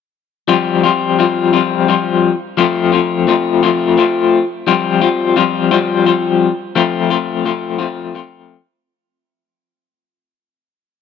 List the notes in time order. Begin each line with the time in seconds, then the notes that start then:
0.48 F3 G3 C4 F4
0.83 F3 G3 C4 F4
1.19 F3 G3 C4 F4
1.53 F3 G3 C4 F4
1.88 F3 G3 C4 F4
2.57 F3 A3 C4 F4
2.92 F3 A3 C4 F4
3.27 F3 A3 C4 F4
3.63 F3 A3 C4 F4
3.97 F3 A3 C4 F4
4.67 F3 G3 C4 F4
5.01 F3 G3 C4 F4
5.36 F3 G3 C4 F4
5.71 F3 G3 C4 F4
6.06 F3 G3 C4 F4
6.75 F3 A3 C4 F4
7.10 F3 A3 C4 F4
7.45 F3 A3 C4 F4
7.78 F3 A3 C4 F4
8.15 F3 A3 C4 F4